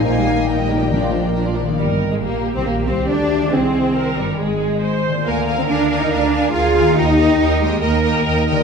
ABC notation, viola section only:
X:1
M:4/4
L:1/16
Q:1/4=139
K:Eb
V:1 name="Viola section"
[B,E] [G,B,] [B,E] [G,B,] [B,E] [G,B,] [B,E] [G,B,] [F,D] [B,F] [F,D] [B,F] [F,D] [B,F] [F,D] [B,F] | B4 G12 | A4 B4 A4 c4 | B12 A4 |
G4 G4 B8 |]